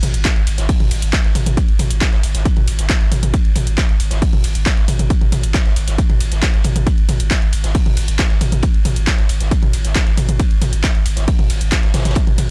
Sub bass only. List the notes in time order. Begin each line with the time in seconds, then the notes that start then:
0.03 G#1
0.14 G#1
0.36 G#1
0.47 G#1
0.58 G#1
0.80 G#1
0.91 G#1
1.02 G#1
1.24 G#1
1.35 G#1
1.46 G#1
1.68 G#1
1.79 G#1
1.90 G#1
2.12 G#1
2.23 G#1
2.35 G#1
2.57 G#1
2.67 G#1
2.79 G#1
3.01 G#1
3.12 G#1
3.23 G#1
3.45 G#1
3.56 G#1
3.67 G#1
3.89 G#1
4.00 G#1
4.11 G#1
4.33 G#1
4.44 G#1
4.55 G#1
4.77 G#1
4.88 G#1
4.99 G#1
5.21 G#1
5.32 G#1
5.43 G#1
5.65 G#1
5.76 G#1
5.87 G#1
6.10 G#1
6.20 G#1
6.32 G#1
6.54 G#1
6.65 G#1
6.76 G#1
6.98 G#1
7.09 G#1
7.20 G#1
7.42 G#1
7.53 G#1
7.64 G#1
7.86 G#1
7.97 G#1
8.08 G#1
8.30 G#1
8.41 G#1
8.52 G#1
8.74 G#1
8.85 G#1
8.96 G#1
9.18 G#1
9.29 G#1
9.40 G#1
9.63 G#1
9.73 G#1
9.85 G#1
10.07 G#1
10.18 G#1
10.29 G#1
10.51 G#1
10.62 G#1
10.73 G#1
10.95 G#1
11.06 G#1
11.17 G#1
11.39 G#1
11.50 G#1
11.61 G#1
11.83 G#1
11.94 G#1
12.05 G#1
12.27 G#1
12.38 G#1